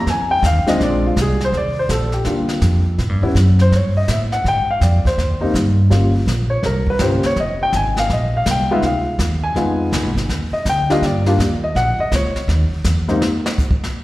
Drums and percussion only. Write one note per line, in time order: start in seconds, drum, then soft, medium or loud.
0.07 brush sweep soft
0.07 kick soft
0.07 snare soft
0.43 kick soft
0.43 snare medium
0.43 hi-hat pedal medium
0.67 snare soft
0.80 brush sweep medium
0.80 kick soft
0.80 snare soft
1.16 kick soft
1.16 snare medium
1.16 hi-hat pedal soft
1.41 snare soft
1.53 brush sweep soft
1.53 kick soft
1.53 snare soft
1.89 kick soft
1.89 snare soft
1.89 hi-hat pedal soft
2.12 snare soft
2.25 brush sweep soft
2.25 kick soft
2.25 snare soft
2.49 snare soft
2.62 kick soft
2.62 snare medium
2.62 hi-hat pedal medium
2.98 brush sweep soft
2.98 kick soft
2.98 snare soft
3.35 kick soft
3.35 snare medium
3.35 hi-hat pedal medium
3.59 snare soft
3.72 brush sweep soft
3.72 kick soft
3.72 snare soft
4.08 kick soft
4.08 snare medium
4.08 hi-hat pedal medium
4.32 snare soft
4.45 brush sweep soft
4.45 kick soft
4.45 snare soft
4.81 kick soft
4.81 snare soft
4.81 hi-hat pedal soft
5.05 kick medium
5.05 snare soft
5.18 brush sweep soft
5.18 kick soft
5.18 snare soft
5.54 kick soft
5.54 snare medium
5.54 hi-hat pedal soft
5.91 brush sweep soft
5.91 kick soft
5.91 snare soft
6.27 kick soft
6.27 snare soft
6.27 hi-hat pedal soft
6.63 brush sweep soft
6.63 kick soft
6.63 snare soft
6.87 kick soft
6.99 kick soft
6.99 snare medium
6.99 hi-hat pedal medium
7.23 snare soft
7.36 brush sweep soft
7.36 kick soft
7.36 snare soft
7.73 kick soft
7.73 snare soft
7.73 hi-hat pedal medium
7.97 snare soft
8.10 brush sweep medium
8.10 kick soft
8.10 snare soft
8.46 kick soft
8.46 snare soft
8.46 hi-hat pedal medium
8.82 brush sweep soft
8.82 kick soft
8.82 snare soft
9.19 kick soft
9.19 snare soft
9.19 hi-hat pedal medium
9.56 brush sweep soft
9.56 kick soft
9.56 snare soft
9.92 kick soft
9.92 snare medium
9.92 hi-hat pedal soft
10.17 snare soft
10.29 brush sweep soft
10.29 kick soft
10.29 snare soft
10.66 kick soft
10.66 snare medium
10.66 hi-hat pedal medium
10.90 snare soft
11.02 brush sweep soft
11.02 kick soft
11.02 snare soft
11.26 snare soft
11.39 kick soft
11.39 snare medium
11.39 hi-hat pedal medium
11.75 brush sweep soft
11.75 kick soft
11.75 snare soft
12.12 kick soft
12.12 snare medium
12.12 hi-hat pedal soft
12.36 snare soft
12.48 brush sweep soft
12.48 kick soft
12.48 snare soft
12.84 kick soft
12.84 snare medium
12.84 hi-hat pedal medium
13.09 snare soft
13.22 snare medium
13.46 snare medium
13.58 kick medium
13.58 hi-hat pedal soft
13.71 kick medium
13.84 snare soft